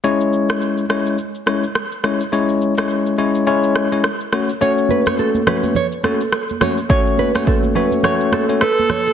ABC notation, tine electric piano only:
X:1
M:4/4
L:1/16
Q:"Swing 16ths" 1/4=105
K:C#phr
V:1 name="Tine electric piano"
[G,CEc]6 [G,CEc]2 z2 [G,CEc] z3 [G,CEc] z | [G,CEc]3 [G,CEc]3 [G,CEc]2 [G,CEc]3 [G,CEc] z2 [A,CFc] z | [A,CFc]6 [A,CFc]2 z2 [A,CFc] z3 [A,CFc] z | [A,CFc]3 [A,CFc]3 [A,CFc]2 [A,CFc]3 [A,CFc] z4 |]